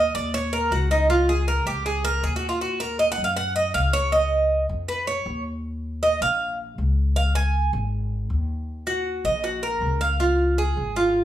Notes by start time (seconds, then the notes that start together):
Already playing: D#5
0.14 D#2 D5
0.34 C#5
0.53 A#4
0.71 C#2 F#4
0.91 D#4
1.10 F4
1.29 G#4
1.48 A#4
1.66 C#2 G4
1.86 G#4
2.05 A#4
2.23 D#2 G#4
2.36 F#4
2.49 F4
2.61 F#4
2.80 A#4
2.99 D#5
3.12 F#5
3.18 F#2
3.24 F5
3.36 F#5
3.56 D#5
3.74 C#2 F5
3.93 C#5
4.12 D#5
4.69 F2
4.88 B4
5.07 C#5
5.26 D#2
6.03 D#5
6.21 A#1 F5
6.78 C#2
7.16 F5
7.35 G#5
7.73 G#1
8.30 D#2
8.87 F#4
9.24 A#1 D#5
9.44 F#4
9.63 A#4
9.82 C#2
10.01 F5
10.20 F4
10.58 G#4
10.77 G#1
10.96 F4